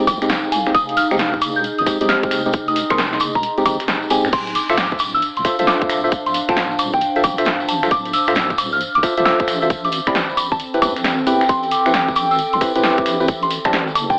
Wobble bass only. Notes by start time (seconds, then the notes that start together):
0.07 C2
0.22 F1
0.52 C2
0.75 F1
1.11 F1
1.78 F1
2.01 C2
2.31 F1
2.91 F1
3.66 F1
3.80 F1
4.25 F2
4.33 D1
4.70 D1
5.37 D1
5.59 A1
5.89 D1
6.49 D1
7.24 A1
7.38 D1
7.69 A1
7.91 D1
8.28 D1
8.95 D1
9.17 A1
9.48 A1
10.07 A1
10.82 E2
10.96 A1
11.27 E2
11.49 A1
11.86 A1
12.53 A1
12.75 E1
13.06 A1
13.65 A1
13.95 F1